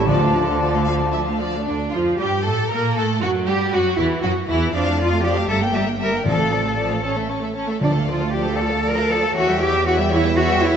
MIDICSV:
0, 0, Header, 1, 12, 480
1, 0, Start_track
1, 0, Key_signature, -1, "minor"
1, 0, Tempo, 530504
1, 68, Time_signature, 6, 3, 24, 8
1, 1987, Tempo, 506757
1, 5347, Tempo, 514580
1, 10034, End_track
2, 0, Start_track
2, 0, Title_t, "Flute section"
2, 0, Program_c, 0, 73
2, 0, Note_on_c, 0, 81, 65
2, 1239, Note_off_c, 0, 81, 0
2, 10034, End_track
3, 0, Start_track
3, 0, Title_t, "Violin section"
3, 0, Program_c, 1, 48
3, 78, Note_on_c, 1, 81, 49
3, 186, Note_off_c, 1, 81, 0
3, 203, Note_on_c, 1, 77, 44
3, 317, Note_off_c, 1, 77, 0
3, 331, Note_on_c, 1, 81, 46
3, 442, Note_off_c, 1, 81, 0
3, 458, Note_on_c, 1, 77, 43
3, 564, Note_on_c, 1, 81, 44
3, 566, Note_off_c, 1, 77, 0
3, 672, Note_off_c, 1, 81, 0
3, 687, Note_on_c, 1, 77, 42
3, 802, Note_off_c, 1, 77, 0
3, 803, Note_on_c, 1, 81, 44
3, 920, Note_off_c, 1, 81, 0
3, 920, Note_on_c, 1, 77, 40
3, 1038, Note_on_c, 1, 81, 42
3, 1039, Note_off_c, 1, 77, 0
3, 1150, Note_off_c, 1, 81, 0
3, 1168, Note_on_c, 1, 77, 43
3, 1281, Note_on_c, 1, 81, 42
3, 1284, Note_off_c, 1, 77, 0
3, 1392, Note_on_c, 1, 77, 40
3, 1400, Note_off_c, 1, 81, 0
3, 1509, Note_on_c, 1, 62, 53
3, 1514, Note_off_c, 1, 77, 0
3, 1732, Note_off_c, 1, 62, 0
3, 1740, Note_on_c, 1, 65, 53
3, 1980, Note_off_c, 1, 65, 0
3, 1986, Note_on_c, 1, 67, 56
3, 2224, Note_off_c, 1, 67, 0
3, 2227, Note_on_c, 1, 69, 55
3, 2458, Note_on_c, 1, 70, 62
3, 2466, Note_off_c, 1, 69, 0
3, 2693, Note_on_c, 1, 69, 55
3, 2707, Note_off_c, 1, 70, 0
3, 2938, Note_on_c, 1, 66, 57
3, 2946, Note_off_c, 1, 69, 0
3, 3014, Note_off_c, 1, 66, 0
3, 3175, Note_on_c, 1, 67, 66
3, 3422, Note_off_c, 1, 67, 0
3, 3428, Note_on_c, 1, 66, 61
3, 3667, Note_off_c, 1, 66, 0
3, 3684, Note_on_c, 1, 64, 62
3, 3760, Note_off_c, 1, 64, 0
3, 3916, Note_on_c, 1, 66, 65
3, 4148, Note_off_c, 1, 66, 0
3, 4154, Note_on_c, 1, 64, 62
3, 4379, Note_on_c, 1, 77, 57
3, 4385, Note_off_c, 1, 64, 0
3, 4493, Note_off_c, 1, 77, 0
3, 4505, Note_on_c, 1, 81, 51
3, 4612, Note_on_c, 1, 77, 51
3, 4624, Note_off_c, 1, 81, 0
3, 4738, Note_off_c, 1, 77, 0
3, 4756, Note_on_c, 1, 81, 47
3, 4870, Note_off_c, 1, 81, 0
3, 4871, Note_on_c, 1, 77, 50
3, 4980, Note_off_c, 1, 77, 0
3, 4989, Note_on_c, 1, 81, 50
3, 5108, Note_off_c, 1, 81, 0
3, 5113, Note_on_c, 1, 82, 52
3, 5222, Note_off_c, 1, 82, 0
3, 5236, Note_on_c, 1, 79, 47
3, 5352, Note_off_c, 1, 79, 0
3, 5357, Note_on_c, 1, 82, 47
3, 5471, Note_off_c, 1, 82, 0
3, 5480, Note_on_c, 1, 79, 45
3, 5593, Note_off_c, 1, 79, 0
3, 5598, Note_on_c, 1, 82, 42
3, 5704, Note_off_c, 1, 82, 0
3, 5724, Note_on_c, 1, 79, 41
3, 5826, Note_on_c, 1, 81, 46
3, 5835, Note_off_c, 1, 79, 0
3, 5938, Note_off_c, 1, 81, 0
3, 5952, Note_on_c, 1, 77, 44
3, 6067, Note_on_c, 1, 81, 41
3, 6069, Note_off_c, 1, 77, 0
3, 6188, Note_off_c, 1, 81, 0
3, 6202, Note_on_c, 1, 77, 38
3, 6316, Note_off_c, 1, 77, 0
3, 6319, Note_on_c, 1, 81, 40
3, 6427, Note_off_c, 1, 81, 0
3, 6439, Note_on_c, 1, 77, 38
3, 6550, Note_on_c, 1, 81, 42
3, 6556, Note_off_c, 1, 77, 0
3, 6664, Note_off_c, 1, 81, 0
3, 6667, Note_on_c, 1, 76, 37
3, 6793, Note_off_c, 1, 76, 0
3, 6794, Note_on_c, 1, 81, 40
3, 6918, Note_off_c, 1, 81, 0
3, 6921, Note_on_c, 1, 76, 37
3, 7033, Note_on_c, 1, 81, 37
3, 7042, Note_off_c, 1, 76, 0
3, 7150, Note_off_c, 1, 81, 0
3, 7153, Note_on_c, 1, 76, 35
3, 7279, Note_off_c, 1, 76, 0
3, 7281, Note_on_c, 1, 81, 44
3, 7395, Note_off_c, 1, 81, 0
3, 7407, Note_on_c, 1, 77, 43
3, 7526, Note_off_c, 1, 77, 0
3, 7530, Note_on_c, 1, 81, 44
3, 7638, Note_on_c, 1, 77, 42
3, 7649, Note_off_c, 1, 81, 0
3, 7761, Note_on_c, 1, 81, 43
3, 7763, Note_off_c, 1, 77, 0
3, 7876, Note_off_c, 1, 81, 0
3, 7896, Note_on_c, 1, 77, 44
3, 8005, Note_on_c, 1, 81, 48
3, 8012, Note_off_c, 1, 77, 0
3, 8116, Note_on_c, 1, 77, 41
3, 8127, Note_off_c, 1, 81, 0
3, 8230, Note_on_c, 1, 81, 45
3, 8242, Note_off_c, 1, 77, 0
3, 8350, Note_off_c, 1, 81, 0
3, 8357, Note_on_c, 1, 77, 46
3, 8482, Note_off_c, 1, 77, 0
3, 8493, Note_on_c, 1, 81, 49
3, 8597, Note_on_c, 1, 77, 48
3, 8609, Note_off_c, 1, 81, 0
3, 8721, Note_off_c, 1, 77, 0
3, 8723, Note_on_c, 1, 76, 54
3, 8834, Note_off_c, 1, 76, 0
3, 8848, Note_on_c, 1, 79, 55
3, 8961, Note_on_c, 1, 76, 58
3, 8964, Note_off_c, 1, 79, 0
3, 9080, Note_off_c, 1, 76, 0
3, 9098, Note_on_c, 1, 79, 51
3, 9193, Note_on_c, 1, 76, 60
3, 9207, Note_off_c, 1, 79, 0
3, 9305, Note_off_c, 1, 76, 0
3, 9324, Note_on_c, 1, 79, 56
3, 9425, Note_on_c, 1, 76, 60
3, 9438, Note_off_c, 1, 79, 0
3, 9548, Note_off_c, 1, 76, 0
3, 9552, Note_on_c, 1, 79, 57
3, 9670, Note_off_c, 1, 79, 0
3, 9683, Note_on_c, 1, 76, 59
3, 9787, Note_off_c, 1, 76, 0
3, 9804, Note_on_c, 1, 79, 55
3, 9915, Note_off_c, 1, 79, 0
3, 9923, Note_on_c, 1, 76, 53
3, 10034, Note_off_c, 1, 76, 0
3, 10034, End_track
4, 0, Start_track
4, 0, Title_t, "Oboe"
4, 0, Program_c, 2, 68
4, 65, Note_on_c, 2, 74, 57
4, 1278, Note_off_c, 2, 74, 0
4, 10034, End_track
5, 0, Start_track
5, 0, Title_t, "Violin section"
5, 0, Program_c, 3, 48
5, 57, Note_on_c, 3, 74, 51
5, 166, Note_on_c, 3, 69, 46
5, 174, Note_off_c, 3, 74, 0
5, 280, Note_on_c, 3, 74, 46
5, 298, Note_off_c, 3, 69, 0
5, 401, Note_on_c, 3, 69, 44
5, 416, Note_off_c, 3, 74, 0
5, 532, Note_on_c, 3, 74, 43
5, 537, Note_off_c, 3, 69, 0
5, 647, Note_on_c, 3, 69, 40
5, 655, Note_off_c, 3, 74, 0
5, 770, Note_on_c, 3, 77, 59
5, 782, Note_off_c, 3, 69, 0
5, 842, Note_off_c, 3, 77, 0
5, 1009, Note_on_c, 3, 76, 53
5, 1081, Note_off_c, 3, 76, 0
5, 1255, Note_on_c, 3, 74, 49
5, 1483, Note_on_c, 3, 62, 52
5, 1501, Note_off_c, 3, 74, 0
5, 1718, Note_off_c, 3, 62, 0
5, 1725, Note_on_c, 3, 65, 52
5, 1797, Note_off_c, 3, 65, 0
5, 1961, Note_on_c, 3, 67, 54
5, 2209, Note_on_c, 3, 69, 59
5, 2211, Note_off_c, 3, 67, 0
5, 2454, Note_on_c, 3, 70, 59
5, 2461, Note_off_c, 3, 69, 0
5, 2702, Note_on_c, 3, 69, 60
5, 2706, Note_off_c, 3, 70, 0
5, 2946, Note_off_c, 3, 69, 0
5, 2957, Note_on_c, 3, 66, 58
5, 3033, Note_off_c, 3, 66, 0
5, 3195, Note_on_c, 3, 67, 61
5, 3271, Note_off_c, 3, 67, 0
5, 3423, Note_on_c, 3, 66, 59
5, 3664, Note_off_c, 3, 66, 0
5, 3669, Note_on_c, 3, 64, 60
5, 3744, Note_off_c, 3, 64, 0
5, 3913, Note_on_c, 3, 66, 62
5, 3989, Note_off_c, 3, 66, 0
5, 4153, Note_on_c, 3, 64, 66
5, 4384, Note_off_c, 3, 64, 0
5, 4385, Note_on_c, 3, 74, 53
5, 4497, Note_off_c, 3, 74, 0
5, 4505, Note_on_c, 3, 77, 52
5, 4625, Note_off_c, 3, 77, 0
5, 4625, Note_on_c, 3, 74, 53
5, 4743, Note_on_c, 3, 77, 51
5, 4745, Note_off_c, 3, 74, 0
5, 4864, Note_off_c, 3, 77, 0
5, 4864, Note_on_c, 3, 74, 48
5, 4974, Note_on_c, 3, 77, 48
5, 4976, Note_off_c, 3, 74, 0
5, 5095, Note_on_c, 3, 76, 50
5, 5100, Note_off_c, 3, 77, 0
5, 5207, Note_on_c, 3, 79, 46
5, 5212, Note_off_c, 3, 76, 0
5, 5337, Note_off_c, 3, 79, 0
5, 5340, Note_on_c, 3, 76, 48
5, 5462, Note_on_c, 3, 79, 43
5, 5463, Note_off_c, 3, 76, 0
5, 5584, Note_off_c, 3, 79, 0
5, 5584, Note_on_c, 3, 76, 45
5, 5696, Note_off_c, 3, 76, 0
5, 5706, Note_on_c, 3, 79, 41
5, 5823, Note_on_c, 3, 74, 49
5, 5826, Note_off_c, 3, 79, 0
5, 5936, Note_off_c, 3, 74, 0
5, 5960, Note_on_c, 3, 69, 43
5, 6073, Note_off_c, 3, 69, 0
5, 6081, Note_on_c, 3, 74, 43
5, 6194, Note_off_c, 3, 74, 0
5, 6198, Note_on_c, 3, 69, 40
5, 6305, Note_on_c, 3, 74, 39
5, 6314, Note_off_c, 3, 69, 0
5, 6420, Note_off_c, 3, 74, 0
5, 6437, Note_on_c, 3, 69, 36
5, 6555, Note_off_c, 3, 69, 0
5, 6565, Note_on_c, 3, 73, 40
5, 6670, Note_on_c, 3, 69, 37
5, 6672, Note_off_c, 3, 73, 0
5, 6794, Note_off_c, 3, 69, 0
5, 6804, Note_on_c, 3, 73, 39
5, 6918, Note_on_c, 3, 69, 36
5, 6923, Note_off_c, 3, 73, 0
5, 7032, Note_on_c, 3, 73, 38
5, 7041, Note_off_c, 3, 69, 0
5, 7150, Note_off_c, 3, 73, 0
5, 7164, Note_on_c, 3, 69, 38
5, 7275, Note_on_c, 3, 74, 47
5, 7285, Note_off_c, 3, 69, 0
5, 7383, Note_on_c, 3, 69, 39
5, 7391, Note_off_c, 3, 74, 0
5, 7499, Note_on_c, 3, 74, 43
5, 7514, Note_off_c, 3, 69, 0
5, 7618, Note_on_c, 3, 69, 43
5, 7633, Note_off_c, 3, 74, 0
5, 7741, Note_on_c, 3, 74, 43
5, 7753, Note_off_c, 3, 69, 0
5, 7861, Note_on_c, 3, 69, 42
5, 7865, Note_off_c, 3, 74, 0
5, 7977, Note_on_c, 3, 74, 47
5, 7995, Note_off_c, 3, 69, 0
5, 8099, Note_on_c, 3, 69, 43
5, 8113, Note_off_c, 3, 74, 0
5, 8230, Note_on_c, 3, 74, 44
5, 8234, Note_off_c, 3, 69, 0
5, 8340, Note_on_c, 3, 69, 49
5, 8350, Note_off_c, 3, 74, 0
5, 8471, Note_on_c, 3, 74, 54
5, 8474, Note_off_c, 3, 69, 0
5, 8588, Note_on_c, 3, 69, 48
5, 8599, Note_off_c, 3, 74, 0
5, 8697, Note_on_c, 3, 73, 57
5, 8716, Note_off_c, 3, 69, 0
5, 8814, Note_on_c, 3, 76, 52
5, 8820, Note_off_c, 3, 73, 0
5, 8947, Note_off_c, 3, 76, 0
5, 8951, Note_on_c, 3, 73, 53
5, 9060, Note_on_c, 3, 76, 53
5, 9074, Note_off_c, 3, 73, 0
5, 9183, Note_on_c, 3, 73, 58
5, 9188, Note_off_c, 3, 76, 0
5, 9299, Note_on_c, 3, 76, 54
5, 9300, Note_off_c, 3, 73, 0
5, 9420, Note_on_c, 3, 73, 60
5, 9426, Note_off_c, 3, 76, 0
5, 9545, Note_on_c, 3, 76, 57
5, 9546, Note_off_c, 3, 73, 0
5, 9663, Note_on_c, 3, 73, 58
5, 9667, Note_off_c, 3, 76, 0
5, 9776, Note_off_c, 3, 73, 0
5, 9787, Note_on_c, 3, 76, 59
5, 9907, Note_off_c, 3, 76, 0
5, 9908, Note_on_c, 3, 73, 60
5, 10027, Note_off_c, 3, 73, 0
5, 10034, End_track
6, 0, Start_track
6, 0, Title_t, "Cello section"
6, 0, Program_c, 4, 48
6, 68, Note_on_c, 4, 50, 57
6, 1332, Note_off_c, 4, 50, 0
6, 1518, Note_on_c, 4, 62, 58
6, 1737, Note_off_c, 4, 62, 0
6, 1748, Note_on_c, 4, 65, 57
6, 1980, Note_on_c, 4, 67, 60
6, 1984, Note_off_c, 4, 65, 0
6, 2221, Note_off_c, 4, 67, 0
6, 2231, Note_on_c, 4, 69, 64
6, 2468, Note_off_c, 4, 69, 0
6, 2475, Note_on_c, 4, 70, 64
6, 2711, Note_off_c, 4, 70, 0
6, 2719, Note_on_c, 4, 69, 63
6, 2794, Note_off_c, 4, 69, 0
6, 2956, Note_on_c, 4, 66, 70
6, 3032, Note_off_c, 4, 66, 0
6, 3201, Note_on_c, 4, 67, 69
6, 3435, Note_off_c, 4, 67, 0
6, 3444, Note_on_c, 4, 66, 66
6, 3678, Note_on_c, 4, 64, 67
6, 3679, Note_off_c, 4, 66, 0
6, 3915, Note_off_c, 4, 64, 0
6, 3918, Note_on_c, 4, 66, 73
6, 3993, Note_off_c, 4, 66, 0
6, 4154, Note_on_c, 4, 64, 71
6, 4385, Note_off_c, 4, 64, 0
6, 4389, Note_on_c, 4, 62, 82
6, 4621, Note_off_c, 4, 62, 0
6, 4629, Note_on_c, 4, 65, 76
6, 4862, Note_off_c, 4, 65, 0
6, 4865, Note_on_c, 4, 67, 75
6, 5106, Note_off_c, 4, 67, 0
6, 5106, Note_on_c, 4, 69, 77
6, 5182, Note_off_c, 4, 69, 0
6, 5346, Note_on_c, 4, 67, 76
6, 5421, Note_off_c, 4, 67, 0
6, 5580, Note_on_c, 4, 70, 73
6, 5818, Note_off_c, 4, 70, 0
6, 5820, Note_on_c, 4, 69, 72
6, 6534, Note_off_c, 4, 69, 0
6, 7279, Note_on_c, 4, 62, 64
6, 7354, Note_off_c, 4, 62, 0
6, 7525, Note_on_c, 4, 65, 67
6, 7762, Note_off_c, 4, 65, 0
6, 7762, Note_on_c, 4, 67, 65
6, 8006, Note_off_c, 4, 67, 0
6, 8007, Note_on_c, 4, 69, 74
6, 8247, Note_off_c, 4, 69, 0
6, 8248, Note_on_c, 4, 70, 85
6, 8484, Note_on_c, 4, 69, 81
6, 8488, Note_off_c, 4, 70, 0
6, 8718, Note_on_c, 4, 66, 87
6, 8724, Note_off_c, 4, 69, 0
6, 8954, Note_off_c, 4, 66, 0
6, 8955, Note_on_c, 4, 67, 89
6, 9190, Note_off_c, 4, 67, 0
6, 9192, Note_on_c, 4, 66, 89
6, 9267, Note_off_c, 4, 66, 0
6, 9436, Note_on_c, 4, 64, 94
6, 9667, Note_off_c, 4, 64, 0
6, 9669, Note_on_c, 4, 66, 95
6, 9903, Note_on_c, 4, 64, 89
6, 9907, Note_off_c, 4, 66, 0
6, 10034, Note_off_c, 4, 64, 0
6, 10034, End_track
7, 0, Start_track
7, 0, Title_t, "French horn section"
7, 0, Program_c, 5, 60
7, 52, Note_on_c, 5, 62, 56
7, 52, Note_on_c, 5, 65, 56
7, 1247, Note_off_c, 5, 62, 0
7, 1247, Note_off_c, 5, 65, 0
7, 10034, End_track
8, 0, Start_track
8, 0, Title_t, "Clarinet"
8, 0, Program_c, 6, 71
8, 66, Note_on_c, 6, 62, 69
8, 1278, Note_off_c, 6, 62, 0
8, 10034, End_track
9, 0, Start_track
9, 0, Title_t, "Viola section"
9, 0, Program_c, 7, 48
9, 55, Note_on_c, 7, 53, 51
9, 171, Note_on_c, 7, 57, 41
9, 174, Note_off_c, 7, 53, 0
9, 292, Note_on_c, 7, 53, 43
9, 301, Note_off_c, 7, 57, 0
9, 417, Note_on_c, 7, 57, 41
9, 422, Note_off_c, 7, 53, 0
9, 544, Note_on_c, 7, 53, 46
9, 545, Note_off_c, 7, 57, 0
9, 661, Note_off_c, 7, 53, 0
9, 662, Note_on_c, 7, 57, 40
9, 787, Note_on_c, 7, 53, 46
9, 789, Note_off_c, 7, 57, 0
9, 910, Note_on_c, 7, 57, 40
9, 912, Note_off_c, 7, 53, 0
9, 1034, Note_off_c, 7, 57, 0
9, 1036, Note_on_c, 7, 53, 41
9, 1149, Note_off_c, 7, 53, 0
9, 1157, Note_on_c, 7, 57, 43
9, 1267, Note_on_c, 7, 53, 47
9, 1278, Note_off_c, 7, 57, 0
9, 1393, Note_off_c, 7, 53, 0
9, 1399, Note_on_c, 7, 57, 42
9, 1514, Note_on_c, 7, 50, 51
9, 1517, Note_off_c, 7, 57, 0
9, 1587, Note_off_c, 7, 50, 0
9, 1756, Note_on_c, 7, 53, 50
9, 1983, Note_on_c, 7, 55, 54
9, 1984, Note_off_c, 7, 53, 0
9, 2058, Note_off_c, 7, 55, 0
9, 2239, Note_on_c, 7, 57, 53
9, 2314, Note_off_c, 7, 57, 0
9, 2475, Note_on_c, 7, 58, 57
9, 2711, Note_off_c, 7, 58, 0
9, 2722, Note_on_c, 7, 57, 57
9, 2961, Note_off_c, 7, 57, 0
9, 2973, Note_on_c, 7, 54, 59
9, 3202, Note_off_c, 7, 54, 0
9, 3215, Note_on_c, 7, 55, 62
9, 3447, Note_off_c, 7, 55, 0
9, 3452, Note_on_c, 7, 54, 63
9, 3684, Note_off_c, 7, 54, 0
9, 3688, Note_on_c, 7, 52, 63
9, 3915, Note_off_c, 7, 52, 0
9, 3917, Note_on_c, 7, 54, 65
9, 3993, Note_off_c, 7, 54, 0
9, 4158, Note_on_c, 7, 52, 67
9, 4387, Note_off_c, 7, 52, 0
9, 4393, Note_on_c, 7, 53, 56
9, 4501, Note_off_c, 7, 53, 0
9, 4505, Note_on_c, 7, 57, 48
9, 4625, Note_off_c, 7, 57, 0
9, 4633, Note_on_c, 7, 53, 45
9, 4747, Note_on_c, 7, 57, 45
9, 4748, Note_off_c, 7, 53, 0
9, 4864, Note_on_c, 7, 53, 52
9, 4866, Note_off_c, 7, 57, 0
9, 4976, Note_off_c, 7, 53, 0
9, 4983, Note_on_c, 7, 57, 47
9, 5105, Note_off_c, 7, 57, 0
9, 5105, Note_on_c, 7, 55, 49
9, 5218, Note_off_c, 7, 55, 0
9, 5228, Note_on_c, 7, 58, 44
9, 5347, Note_on_c, 7, 55, 47
9, 5348, Note_off_c, 7, 58, 0
9, 5465, Note_on_c, 7, 58, 42
9, 5466, Note_off_c, 7, 55, 0
9, 5583, Note_on_c, 7, 55, 44
9, 5585, Note_off_c, 7, 58, 0
9, 5696, Note_off_c, 7, 55, 0
9, 5697, Note_on_c, 7, 58, 42
9, 5820, Note_on_c, 7, 53, 45
9, 5821, Note_off_c, 7, 58, 0
9, 5932, Note_on_c, 7, 57, 39
9, 5934, Note_off_c, 7, 53, 0
9, 6053, Note_on_c, 7, 53, 40
9, 6059, Note_off_c, 7, 57, 0
9, 6181, Note_off_c, 7, 53, 0
9, 6181, Note_on_c, 7, 57, 39
9, 6301, Note_on_c, 7, 53, 39
9, 6305, Note_off_c, 7, 57, 0
9, 6418, Note_off_c, 7, 53, 0
9, 6420, Note_on_c, 7, 57, 39
9, 6532, Note_on_c, 7, 61, 41
9, 6547, Note_off_c, 7, 57, 0
9, 6654, Note_off_c, 7, 61, 0
9, 6662, Note_on_c, 7, 57, 37
9, 6782, Note_on_c, 7, 61, 39
9, 6790, Note_off_c, 7, 57, 0
9, 6905, Note_on_c, 7, 57, 35
9, 6912, Note_off_c, 7, 61, 0
9, 7034, Note_off_c, 7, 57, 0
9, 7037, Note_on_c, 7, 61, 41
9, 7152, Note_off_c, 7, 61, 0
9, 7156, Note_on_c, 7, 57, 39
9, 7276, Note_on_c, 7, 53, 43
9, 7281, Note_off_c, 7, 57, 0
9, 7392, Note_off_c, 7, 53, 0
9, 7394, Note_on_c, 7, 57, 39
9, 7520, Note_off_c, 7, 57, 0
9, 7522, Note_on_c, 7, 53, 42
9, 7644, Note_off_c, 7, 53, 0
9, 7650, Note_on_c, 7, 57, 42
9, 7769, Note_off_c, 7, 57, 0
9, 7775, Note_on_c, 7, 53, 44
9, 7883, Note_off_c, 7, 53, 0
9, 7885, Note_on_c, 7, 57, 44
9, 8000, Note_on_c, 7, 53, 51
9, 8007, Note_off_c, 7, 57, 0
9, 8120, Note_on_c, 7, 57, 44
9, 8124, Note_off_c, 7, 53, 0
9, 8240, Note_on_c, 7, 53, 44
9, 8244, Note_off_c, 7, 57, 0
9, 8355, Note_off_c, 7, 53, 0
9, 8359, Note_on_c, 7, 57, 47
9, 8483, Note_off_c, 7, 57, 0
9, 8483, Note_on_c, 7, 53, 51
9, 8588, Note_on_c, 7, 57, 53
9, 8605, Note_off_c, 7, 53, 0
9, 8711, Note_on_c, 7, 52, 56
9, 8717, Note_off_c, 7, 57, 0
9, 8828, Note_off_c, 7, 52, 0
9, 8840, Note_on_c, 7, 55, 50
9, 8947, Note_on_c, 7, 52, 52
9, 8960, Note_off_c, 7, 55, 0
9, 9070, Note_on_c, 7, 55, 53
9, 9072, Note_off_c, 7, 52, 0
9, 9193, Note_off_c, 7, 55, 0
9, 9193, Note_on_c, 7, 52, 59
9, 9305, Note_off_c, 7, 52, 0
9, 9310, Note_on_c, 7, 55, 56
9, 9430, Note_on_c, 7, 52, 61
9, 9431, Note_off_c, 7, 55, 0
9, 9542, Note_on_c, 7, 55, 53
9, 9550, Note_off_c, 7, 52, 0
9, 9650, Note_on_c, 7, 52, 57
9, 9666, Note_off_c, 7, 55, 0
9, 9770, Note_off_c, 7, 52, 0
9, 9774, Note_on_c, 7, 55, 56
9, 9900, Note_off_c, 7, 55, 0
9, 9900, Note_on_c, 7, 52, 57
9, 10023, Note_off_c, 7, 52, 0
9, 10034, End_track
10, 0, Start_track
10, 0, Title_t, "Bassoon"
10, 0, Program_c, 8, 70
10, 73, Note_on_c, 8, 53, 56
10, 1282, Note_off_c, 8, 53, 0
10, 10034, End_track
11, 0, Start_track
11, 0, Title_t, "Timpani"
11, 0, Program_c, 10, 47
11, 65, Note_on_c, 10, 50, 72
11, 757, Note_off_c, 10, 50, 0
11, 5823, Note_on_c, 10, 45, 64
11, 6513, Note_off_c, 10, 45, 0
11, 7277, Note_on_c, 10, 50, 64
11, 7967, Note_off_c, 10, 50, 0
11, 10034, End_track
12, 0, Start_track
12, 0, Title_t, "Double bass section"
12, 0, Program_c, 11, 48
12, 70, Note_on_c, 11, 38, 56
12, 1333, Note_off_c, 11, 38, 0
12, 1523, Note_on_c, 11, 38, 50
12, 1740, Note_off_c, 11, 38, 0
12, 1761, Note_on_c, 11, 41, 47
12, 1834, Note_off_c, 11, 41, 0
12, 1994, Note_on_c, 11, 43, 58
12, 2228, Note_off_c, 11, 43, 0
12, 2243, Note_on_c, 11, 45, 60
12, 2478, Note_on_c, 11, 46, 60
12, 2479, Note_off_c, 11, 45, 0
12, 2713, Note_off_c, 11, 46, 0
12, 2723, Note_on_c, 11, 45, 60
12, 2957, Note_off_c, 11, 45, 0
12, 2960, Note_on_c, 11, 42, 63
12, 3201, Note_off_c, 11, 42, 0
12, 3207, Note_on_c, 11, 43, 59
12, 3443, Note_off_c, 11, 43, 0
12, 3443, Note_on_c, 11, 42, 62
12, 3519, Note_off_c, 11, 42, 0
12, 3677, Note_on_c, 11, 40, 67
12, 3753, Note_off_c, 11, 40, 0
12, 3911, Note_on_c, 11, 42, 69
12, 3987, Note_off_c, 11, 42, 0
12, 4154, Note_on_c, 11, 40, 67
12, 4385, Note_off_c, 11, 40, 0
12, 4388, Note_on_c, 11, 41, 65
12, 5068, Note_off_c, 11, 41, 0
12, 5108, Note_on_c, 11, 31, 62
12, 5812, Note_off_c, 11, 31, 0
12, 5829, Note_on_c, 11, 33, 53
12, 7097, Note_off_c, 11, 33, 0
12, 7285, Note_on_c, 11, 38, 52
12, 8689, Note_off_c, 11, 38, 0
12, 8724, Note_on_c, 11, 40, 72
12, 10034, Note_off_c, 11, 40, 0
12, 10034, End_track
0, 0, End_of_file